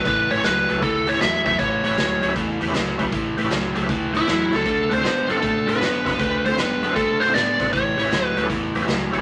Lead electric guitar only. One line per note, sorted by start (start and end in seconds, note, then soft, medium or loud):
0.07 0.30 B4 loud
0.31 0.45 C#5 medium
0.44 0.83 B4 loud
0.83 1.09 A4 medium
1.09 1.21 C#5 medium
1.22 1.45 E5 medium
1.46 1.59 E5 medium
1.59 2.32 C#5 loud
4.17 4.55 E4 medium
4.56 4.93 A4 medium
4.93 5.31 C5 medium
5.31 5.69 A4 medium
5.69 6.19 B4 medium
6.20 6.45 B4 loud
6.46 6.59 C5 medium
6.59 6.95 B4 medium
6.96 7.20 A4 loud
7.20 7.34 C5 medium
7.34 7.73 D5 loud
7.73 8.26 C#5 medium
8.26 8.46 B4 medium